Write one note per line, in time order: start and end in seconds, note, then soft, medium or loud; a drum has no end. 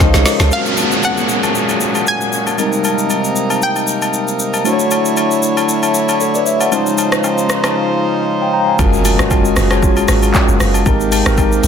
0.00 0.13 C#2 loud
0.00 0.49 C#3 medium
0.00 0.49 F3 medium
0.00 0.50 G#3 medium
0.00 0.51 C#4 medium
0.00 0.49 D#4 medium
0.00 0.54 D#4 medium
0.00 0.53 F4 medium
0.00 0.26 A#4 medium
0.00 0.40 C5 loud
0.00 0.49 C5 medium
0.00 0.26 C#5 medium
0.00 0.24 D#5 medium
0.00 0.53 F5 medium
0.00 kick medium
0.00 snare medium
0.00 low woodblock medium
0.00 shaker medium
0.14 0.25 C2 loud
0.14 snare medium
0.14 shaker medium
0.26 0.40 A#4 medium
0.26 0.39 C#5 medium
0.26 snare loud
0.26 open hi-hat medium
0.26 shaker medium
0.40 0.50 C#2 loud
0.40 0.50 G#4 medium
0.40 0.65 C5 medium
0.40 snare loud
0.40 high agogo medium
0.40 shaker medium
0.50 2.56 A#2 medium
0.50 2.56 F#3 medium
0.50 2.54 G#3 medium
0.50 2.54 C#4 medium
0.50 2.56 F#4 medium
0.50 2.55 F#4 medium
0.50 2.54 G#4 medium
0.50 2.56 G#4 medium
0.50 2.55 A#4 medium
0.50 1.05 F5 medium
0.50 downlifter medium
0.50 high agogo medium
0.50 shaker medium
0.66 shaker soft
0.77 high agogo medium
0.77 shaker medium
0.92 shaker medium
1.03 2.03 F#5 medium
1.03 high agogo medium
1.03 shaker medium
1.17 shaker soft
1.29 shaker medium
1.43 high agogo medium
1.43 shaker soft
1.55 shaker medium
1.69 high agogo medium
1.69 shaker soft
1.81 shaker medium
1.95 high agogo medium
1.95 shaker soft
2.07 3.67 G#5 loud
2.07 shaker medium
2.21 shaker medium
2.33 shaker medium
2.47 high agogo medium
2.47 shaker medium
2.58 4.63 C3 medium
2.58 4.62 G3 medium
2.58 4.61 G#3 medium
2.58 4.63 A#3 medium
2.58 4.61 C4 medium
2.58 4.63 D#4 medium
2.58 4.61 D#4 medium
2.58 4.63 A#4 medium
2.58 4.62 A#4 medium
2.58 high agogo medium
2.58 shaker medium
2.73 shaker soft
2.84 high agogo medium
2.84 shaker loud
2.99 shaker medium
3.10 high agogo medium
3.10 shaker medium
3.24 shaker soft
3.36 shaker medium
3.50 high agogo medium
3.50 shaker soft
3.62 4.36 G5 medium
3.62 shaker medium
3.76 high agogo medium
3.76 shaker soft
3.88 shaker loud
4.02 high agogo medium
4.02 shaker soft
4.14 shaker medium
4.28 shaker medium
4.40 shaker medium
4.54 high agogo medium
4.54 shaker medium
4.64 6.70 D3 medium
4.64 6.70 F#3 medium
4.64 6.68 A3 medium
4.64 6.68 D4 medium
4.64 6.68 E4 medium
4.64 6.70 E4 medium
4.64 6.69 F#4 medium
4.64 4.73 C5 medium
4.64 6.70 C#5 medium
4.64 high agogo medium
4.64 shaker medium
4.73 6.20 C#5 medium
4.79 shaker soft
4.91 high agogo medium
4.91 shaker loud
5.05 shaker medium
5.17 high agogo medium
5.17 shaker medium
5.31 shaker soft
5.43 shaker medium
5.57 high agogo medium
5.57 shaker soft
5.69 shaker medium
5.83 high agogo medium
5.83 shaker soft
5.94 shaker loud
6.09 high agogo medium
6.09 shaker soft
6.21 6.34 A4 medium
6.21 6.34 C#5 medium
6.21 shaker medium
6.35 6.46 B4 medium
6.35 6.46 D5 medium
6.35 shaker medium
6.46 6.60 C#5 medium
6.46 6.60 E5 medium
6.46 shaker medium
6.60 6.86 D5 medium
6.60 6.85 F#5 medium
6.60 high agogo medium
6.60 shaker medium
6.71 8.77 C#3 medium
6.71 8.77 F3 medium
6.71 8.75 G#3 medium
6.71 8.75 C#4 medium
6.71 8.77 D#4 medium
6.71 8.75 D#4 medium
6.71 8.75 F4 medium
6.71 8.77 C5 medium
6.71 8.76 C5 medium
6.71 high agogo medium
6.71 shaker medium
6.86 shaker soft
6.98 high agogo medium
6.98 shaker loud
7.12 cross-stick loud
7.12 shaker medium
7.24 high agogo medium
7.24 low woodblock medium
7.24 shaker medium
7.38 shaker soft
7.50 cross-stick loud
7.50 shaker medium
7.64 cross-stick loud
7.64 high agogo medium
7.64 shaker soft
8.42 8.53 D#5 medium
8.42 8.53 G5 medium
8.53 8.67 G5 medium
8.53 8.67 A#5 medium
8.68 8.92 F5 medium
8.68 8.92 G#5 medium
8.79 9.16 F#1 loud
8.79 10.84 F#3 medium
8.79 9.10 G#3 medium
8.79 10.84 G#3 medium
8.79 10.84 A#3 medium
8.79 9.11 C#4 medium
8.79 9.11 F4 medium
8.79 9.11 F#4 medium
8.79 10.84 G#4 medium
8.79 9.11 A#4 medium
8.79 kick loud
8.79 impact medium
8.79 high agogo medium
8.79 shaker medium
8.93 shaker soft
9.05 open hi-hat medium
9.05 high agogo medium
9.05 shaker loud
9.19 9.53 F#1 medium
9.19 9.59 G#3 medium
9.19 9.60 C#4 medium
9.19 9.60 F4 medium
9.19 9.60 F#4 medium
9.19 9.60 C#5 medium
9.19 cross-stick loud
9.19 shaker medium
9.31 kick medium
9.31 high agogo medium
9.31 low woodblock medium
9.31 shaker medium
9.45 shaker medium
9.56 10.04 F#1 loud
9.56 cross-stick loud
9.56 open hi-hat medium
9.56 shaker medium
9.71 10.53 G#3 medium
9.71 10.53 C#4 medium
9.71 10.53 F4 medium
9.71 10.53 F#4 medium
9.71 10.54 C#5 medium
9.71 cross-stick loud
9.71 high agogo medium
9.71 shaker medium
9.83 kick loud
9.83 shaker medium
9.97 high agogo medium
9.97 shaker soft
10.08 10.32 G#1 medium
10.08 cross-stick medium
10.08 open hi-hat medium
10.08 shaker loud
10.23 high agogo medium
10.23 shaker medium
10.34 kick medium
10.34 clap medium
10.34 low woodblock medium
10.34 shaker medium
10.48 10.59 F#1 medium
10.48 shaker medium
10.60 10.84 F#1 loud
10.60 cross-stick medium
10.60 open hi-hat medium
10.60 shaker medium
10.74 high agogo medium
10.74 shaker medium
10.86 11.23 G#1 loud
10.86 11.68 C3 medium
10.86 11.17 G#3 medium
10.86 11.68 G#3 medium
10.86 11.68 A#3 medium
10.86 11.18 C4 medium
10.86 11.18 D#4 medium
10.86 11.68 G4 medium
10.86 11.18 G4 medium
10.86 11.18 A#4 medium
10.86 kick loud
10.86 high agogo medium
10.86 shaker medium
11.00 shaker soft
11.12 open hi-hat medium
11.12 high agogo medium
11.12 shaker loud
11.26 11.60 G#1 loud
11.26 11.66 G#3 medium
11.26 11.66 C4 medium
11.26 11.67 D#4 medium
11.26 11.67 G4 medium
11.26 11.67 A#4 loud
11.26 cross-stick loud
11.26 shaker medium
11.38 kick medium
11.38 high agogo medium
11.38 low woodblock medium
11.38 shaker medium
11.52 shaker soft
11.64 11.68 G#1 loud
11.64 open hi-hat soft
11.64 shaker medium